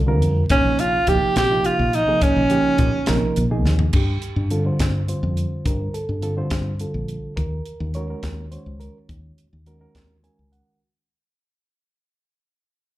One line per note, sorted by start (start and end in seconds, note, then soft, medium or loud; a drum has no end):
0.00 0.22 C2 loud
0.07 0.43 D3 medium
0.07 0.43 G3 medium
0.07 0.43 C4 medium
0.07 0.43 F4 medium
0.07 0.43 A#4 medium
0.22 0.44 F2 medium
0.22 closed hi-hat medium
0.49 0.62 A#1 medium
0.49 0.97 C3 medium
0.49 0.97 F3 medium
0.49 0.97 A#3 medium
0.49 0.81 C#4 medium
0.49 0.97 D#4 medium
0.49 0.98 G#4 medium
0.49 kick loud
0.49 closed hi-hat medium
0.64 0.98 A#1 medium
0.79 1.10 F4 medium
0.79 closed hi-hat medium
1.07 1.19 A#1 medium
1.07 1.43 C3 medium
1.07 1.43 F3 medium
1.07 1.43 A#3 medium
1.07 1.43 D#4 medium
1.07 1.43 G4 medium
1.07 1.37 G4 loud
1.07 kick medium
1.07 closed hi-hat medium
1.36 1.58 A#1 medium
1.36 1.67 G4 loud
1.36 snare loud
1.36 closed hi-hat medium
1.50 1.98 C3 medium
1.50 1.98 F3 medium
1.50 1.98 A#3 medium
1.50 1.98 D#4 medium
1.50 1.98 F4 medium
1.64 1.97 F4 medium
1.64 closed hi-hat medium
1.79 2.01 A#1 medium
1.93 2.24 D#4 medium
1.93 closed hi-hat medium
2.07 2.43 C3 medium
2.07 2.43 F3 medium
2.07 2.43 A#3 medium
2.07 2.43 D#4 medium
2.07 2.43 G#4 medium
2.21 3.37 C#4 medium
2.21 muted fretless electric bass stroke soft
2.21 kick loud
2.21 closed hi-hat medium
2.36 2.58 A#1 medium
2.50 2.97 C#3 medium
2.50 2.97 F3 medium
2.50 2.98 A#3 medium
2.50 2.98 D#4 medium
2.50 2.98 G4 medium
2.50 closed hi-hat medium
2.78 2.90 A#2 medium
2.78 kick medium
2.78 closed hi-hat medium
3.06 3.19 A#1 medium
3.06 3.43 C3 medium
3.06 3.43 F3 medium
3.06 3.43 A#3 medium
3.06 3.43 D#4 medium
3.06 3.43 A#4 medium
3.06 snare loud
3.06 closed hi-hat medium
3.36 3.65 A#1 loud
3.36 closed hi-hat medium
3.50 3.86 C3 medium
3.50 3.86 F3 medium
3.50 3.86 A#3 medium
3.50 3.86 D#4 medium
3.50 3.86 G#4 medium
3.65 3.87 D#2 medium
3.65 snare soft
3.79 floor tom medium
3.93 4.16 G2 medium
3.93 4.48 G4 medium
3.93 kick loud
3.93 crash medium
4.22 closed hi-hat medium
4.36 4.69 G2 medium
4.51 4.62 D3 medium
4.51 4.62 G3 medium
4.51 4.63 C4 medium
4.51 4.63 F4 medium
4.51 4.63 A4 medium
4.51 closed hi-hat medium
4.65 5.00 D3 medium
4.65 5.00 G3 medium
4.65 5.01 C4 medium
4.65 5.01 F4 soft
4.65 5.01 C5 medium
4.79 5.13 G2 medium
4.79 kick medium
4.79 snare loud
4.79 closed hi-hat medium
5.07 6.02 D3 medium
5.07 6.02 G3 medium
5.07 6.03 C4 soft
5.07 6.02 F4 medium
5.07 6.03 C5 medium
5.07 closed hi-hat medium
5.23 5.45 F2 medium
5.37 closed hi-hat medium
5.65 5.87 G2 medium
5.65 5.94 A#4 medium
5.65 kick loud
5.65 closed hi-hat medium
5.94 6.22 A4 medium
5.94 closed hi-hat medium
6.09 6.42 G2 medium
6.22 6.34 D3 medium
6.22 6.34 G3 medium
6.22 6.34 C4 medium
6.22 6.34 F4 medium
6.22 6.34 A4 medium
6.22 closed hi-hat medium
6.37 6.72 D3 medium
6.37 6.72 G3 medium
6.37 6.72 C4 medium
6.37 6.72 F4 medium
6.37 6.73 C5 medium
6.50 6.84 G2 medium
6.50 kick medium
6.50 snare loud
6.50 closed hi-hat medium
6.79 7.37 D3 medium
6.79 7.37 G3 medium
6.79 7.37 C4 soft
6.79 7.37 F4 soft
6.79 7.33 A4 medium
6.79 closed hi-hat soft
6.94 7.16 A#1 medium
7.08 closed hi-hat soft
7.36 7.59 D#2 medium
7.36 7.90 A#4 medium
7.36 kick medium
7.36 closed hi-hat medium
7.66 closed hi-hat soft
7.80 8.13 D#2 medium
7.94 8.06 D#3 medium
7.94 8.06 G#3 medium
7.94 8.06 C#4 medium
7.94 8.07 F#4 medium
7.94 8.07 A#4 medium
7.94 8.48 C#5 medium
7.94 closed hi-hat soft
8.09 8.44 D#3 medium
8.09 8.44 G#3 medium
8.09 8.45 C#4 medium
8.09 8.45 F#4 medium
8.09 8.45 A#4 medium
8.23 8.56 D#2 medium
8.23 kick medium
8.23 snare medium
8.23 closed hi-hat medium
8.52 9.46 D#3 medium
8.52 9.46 G#3 soft
8.52 9.46 C#4 medium
8.52 9.46 F#4 soft
8.52 8.79 C5 medium
8.52 9.46 C#5 medium
8.52 closed hi-hat soft
8.66 8.88 C#2 medium
8.80 8.97 A#4 medium
8.80 closed hi-hat soft
9.09 9.31 D#2 medium
9.09 kick medium
9.09 closed hi-hat medium
9.38 closed hi-hat medium
9.53 9.85 D#2 medium
9.66 9.78 D#3 medium
9.66 9.78 G#3 medium
9.66 9.78 C#4 medium
9.66 9.78 F#4 medium
9.66 9.78 A#4 medium
9.66 closed hi-hat medium
9.80 10.15 D#3 medium
9.80 10.16 G#3 medium
9.80 10.16 C#4 medium
9.80 10.16 F#4 medium
9.80 10.16 A#4 medium
9.95 10.28 D#2 medium
9.95 kick medium
9.95 snare medium
9.95 closed hi-hat medium
10.23 10.81 D#3 medium
10.23 10.80 G#3 medium
10.23 10.80 C#4 medium
10.23 10.81 F#4 medium
10.23 10.81 A#4 medium
10.23 10.50 G#5 soft
10.23 closed hi-hat soft
10.39 10.60 C#2 medium
10.52 10.79 F#5 medium
10.52 closed hi-hat soft